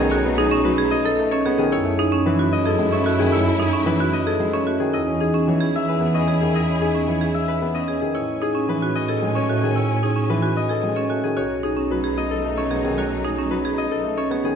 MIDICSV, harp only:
0, 0, Header, 1, 2, 480
1, 0, Start_track
1, 0, Tempo, 535714
1, 103, Time_signature, 3, 2, 24, 8
1, 13041, End_track
2, 0, Start_track
2, 0, Title_t, "Harp"
2, 0, Program_c, 0, 46
2, 0, Note_on_c, 0, 68, 82
2, 0, Note_on_c, 0, 69, 74
2, 0, Note_on_c, 0, 71, 77
2, 0, Note_on_c, 0, 75, 87
2, 96, Note_on_c, 0, 73, 105
2, 326, Note_off_c, 0, 68, 0
2, 337, Note_on_c, 0, 68, 78
2, 567, Note_off_c, 0, 71, 0
2, 578, Note_on_c, 0, 71, 80
2, 806, Note_off_c, 0, 75, 0
2, 816, Note_on_c, 0, 75, 98
2, 928, Note_off_c, 0, 69, 0
2, 939, Note_on_c, 0, 69, 75
2, 1166, Note_off_c, 0, 73, 0
2, 1176, Note_on_c, 0, 73, 92
2, 1408, Note_off_c, 0, 68, 0
2, 1418, Note_on_c, 0, 68, 79
2, 1533, Note_off_c, 0, 73, 0
2, 1544, Note_on_c, 0, 73, 102
2, 1559, Note_off_c, 0, 75, 0
2, 1771, Note_off_c, 0, 68, 0
2, 1782, Note_on_c, 0, 68, 82
2, 2015, Note_off_c, 0, 71, 0
2, 2026, Note_on_c, 0, 71, 71
2, 2262, Note_on_c, 0, 75, 94
2, 2376, Note_off_c, 0, 69, 0
2, 2387, Note_on_c, 0, 69, 72
2, 2613, Note_off_c, 0, 73, 0
2, 2623, Note_on_c, 0, 73, 83
2, 2850, Note_off_c, 0, 68, 0
2, 2860, Note_on_c, 0, 68, 71
2, 2975, Note_off_c, 0, 73, 0
2, 2986, Note_on_c, 0, 73, 89
2, 3216, Note_off_c, 0, 68, 0
2, 3227, Note_on_c, 0, 68, 73
2, 3448, Note_off_c, 0, 71, 0
2, 3459, Note_on_c, 0, 71, 70
2, 3692, Note_off_c, 0, 75, 0
2, 3703, Note_on_c, 0, 75, 87
2, 3811, Note_off_c, 0, 69, 0
2, 3821, Note_on_c, 0, 69, 66
2, 4052, Note_off_c, 0, 73, 0
2, 4062, Note_on_c, 0, 73, 75
2, 4289, Note_off_c, 0, 68, 0
2, 4299, Note_on_c, 0, 68, 67
2, 4411, Note_off_c, 0, 75, 0
2, 4422, Note_on_c, 0, 75, 82
2, 4441, Note_off_c, 0, 69, 0
2, 4442, Note_off_c, 0, 73, 0
2, 4656, Note_off_c, 0, 68, 0
2, 4666, Note_on_c, 0, 68, 60
2, 4913, Note_on_c, 0, 73, 61
2, 5157, Note_on_c, 0, 76, 78
2, 5263, Note_off_c, 0, 71, 0
2, 5274, Note_on_c, 0, 71, 53
2, 5496, Note_off_c, 0, 75, 0
2, 5507, Note_on_c, 0, 75, 69
2, 5737, Note_off_c, 0, 68, 0
2, 5748, Note_on_c, 0, 68, 58
2, 5859, Note_off_c, 0, 75, 0
2, 5870, Note_on_c, 0, 75, 72
2, 6095, Note_off_c, 0, 68, 0
2, 6106, Note_on_c, 0, 68, 60
2, 6342, Note_off_c, 0, 73, 0
2, 6353, Note_on_c, 0, 73, 55
2, 6569, Note_off_c, 0, 76, 0
2, 6580, Note_on_c, 0, 76, 74
2, 6692, Note_off_c, 0, 71, 0
2, 6703, Note_on_c, 0, 71, 55
2, 6929, Note_off_c, 0, 75, 0
2, 6940, Note_on_c, 0, 75, 68
2, 7171, Note_off_c, 0, 68, 0
2, 7182, Note_on_c, 0, 68, 52
2, 7288, Note_off_c, 0, 73, 0
2, 7299, Note_on_c, 0, 73, 78
2, 7534, Note_off_c, 0, 68, 0
2, 7545, Note_on_c, 0, 68, 64
2, 7775, Note_off_c, 0, 71, 0
2, 7785, Note_on_c, 0, 71, 61
2, 8012, Note_off_c, 0, 75, 0
2, 8023, Note_on_c, 0, 75, 82
2, 8144, Note_on_c, 0, 69, 61
2, 8377, Note_off_c, 0, 73, 0
2, 8387, Note_on_c, 0, 73, 77
2, 8622, Note_off_c, 0, 68, 0
2, 8633, Note_on_c, 0, 68, 63
2, 8745, Note_off_c, 0, 73, 0
2, 8755, Note_on_c, 0, 73, 74
2, 8980, Note_off_c, 0, 68, 0
2, 8991, Note_on_c, 0, 68, 62
2, 9214, Note_off_c, 0, 71, 0
2, 9224, Note_on_c, 0, 71, 67
2, 9457, Note_off_c, 0, 75, 0
2, 9468, Note_on_c, 0, 75, 73
2, 9577, Note_off_c, 0, 69, 0
2, 9588, Note_on_c, 0, 69, 57
2, 9808, Note_off_c, 0, 73, 0
2, 9819, Note_on_c, 0, 73, 75
2, 10056, Note_off_c, 0, 68, 0
2, 10067, Note_on_c, 0, 68, 61
2, 10074, Note_off_c, 0, 76, 0
2, 10174, Note_off_c, 0, 73, 0
2, 10184, Note_on_c, 0, 73, 81
2, 10204, Note_off_c, 0, 68, 0
2, 10430, Note_on_c, 0, 68, 64
2, 10663, Note_off_c, 0, 71, 0
2, 10674, Note_on_c, 0, 71, 62
2, 10898, Note_off_c, 0, 75, 0
2, 10908, Note_on_c, 0, 75, 81
2, 11018, Note_off_c, 0, 69, 0
2, 11029, Note_on_c, 0, 69, 65
2, 11255, Note_off_c, 0, 73, 0
2, 11266, Note_on_c, 0, 73, 78
2, 11499, Note_off_c, 0, 68, 0
2, 11509, Note_on_c, 0, 68, 64
2, 11615, Note_off_c, 0, 73, 0
2, 11626, Note_on_c, 0, 73, 75
2, 11856, Note_off_c, 0, 68, 0
2, 11867, Note_on_c, 0, 68, 62
2, 12092, Note_off_c, 0, 71, 0
2, 12103, Note_on_c, 0, 71, 65
2, 12335, Note_off_c, 0, 75, 0
2, 12346, Note_on_c, 0, 75, 76
2, 12455, Note_off_c, 0, 69, 0
2, 12466, Note_on_c, 0, 69, 67
2, 12690, Note_off_c, 0, 73, 0
2, 12700, Note_on_c, 0, 73, 75
2, 12934, Note_off_c, 0, 68, 0
2, 12945, Note_on_c, 0, 68, 68
2, 13041, Note_off_c, 0, 68, 0
2, 13041, Note_off_c, 0, 69, 0
2, 13041, Note_off_c, 0, 71, 0
2, 13041, Note_off_c, 0, 73, 0
2, 13041, Note_off_c, 0, 75, 0
2, 13041, End_track
0, 0, End_of_file